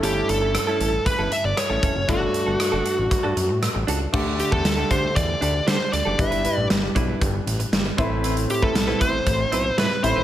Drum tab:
CC |----------------|----------------|x---------------|----------------|
HH |x-x-x-x-x-x-x-x-|x-x-x-x-x-x-x-x-|--x-x-x-x-x-x-x-|xxx-x-x-x-xxx-x-|
SD |----r-------r---|----r-------r---|----o-------o---|----o-------o---|
BD |--------o-----o-|o-------o-------|o--o--o-o-------|o-----o-o-----o-|

CC |----------------|
HH |xxx-x-x-x-x-x-x-|
SD |----o-------o---|
BD |---o--o-o-------|